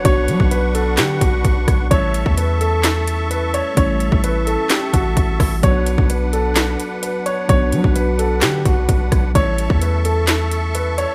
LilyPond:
<<
  \new Staff \with { instrumentName = "Accordion" } { \time 4/4 \key b \minor \tempo 4 = 129 <d' b' fis'' cis'''>1 | <a' e'' a'' cis'''>1~ | <a' e'' a'' cis'''>1 | <d' b' fis''>1~ |
<d' b' fis''>1 | <a' e'' a'' cis'''>1 | }
  \new Staff \with { instrumentName = "Grand piano" } { \time 4/4 \key b \minor cis''4 b'8 a'8 g'8 fis'4. | cis''4 b'8 a'4. b'8 cis''8 | cis''4 b'8 a'8 g'8 fis'4. | cis''4 b'8 a'4. b'8 cis''8 |
cis''4 b'8 a'8 g'8 fis'4. | cis''4 b'8 a'4. b'8 cis''8 | }
  \new Staff \with { instrumentName = "Tine electric piano" } { \time 4/4 \key b \minor <fis b d' fis'>1 | <g a cis' e'>1 | <g a cis' e'>1 | <fis b d' fis'>1 |
<fis b d' fis'>1 | <g a cis' e'>1 | }
  \new Staff \with { instrumentName = "808-style bass" } { \clef bass \time 4/4 \key b \minor b,,8 fis16 b,,4~ b,,16 d8 b,,8 b,,8 b,,8 | a,,8. e,2. r16 | a,,8. a,,4 r8. a,,8 a,,8 a,,8 | b,,8. b,,4.~ b,,16 r4. |
b,,8 fis16 b,,4~ b,,16 d8 b,,8 b,,8 b,,8 | a,,8. e,2. r16 | }
  \new DrumStaff \with { instrumentName = "Drums" } \drummode { \time 4/4 <hh bd>8 hh16 bd16 hh8 hh8 <hc hh sn>8 <hh bd>8 <hh bd>8 <hh bd ss>8 | <hh bd>8 hh16 bd16 hh8 hh8 <hc hh sn>8 hh8 hh8 hh8 | <hh bd>8 hh16 bd16 hh8 hh8 <hc hh sn>8 <hh bd>8 <hh bd>8 <hho bd ss>8 | <hh bd>8 hh16 bd16 hh8 hh8 <hc hh sn>8 hh8 hh8 hh8 |
<hh bd>8 hh16 bd16 hh8 hh8 <hc hh sn>8 <hh bd>8 <hh bd>8 <hh bd ss>8 | <hh bd>8 hh16 bd16 hh8 hh8 <hc hh sn>8 hh8 hh8 hh8 | }
>>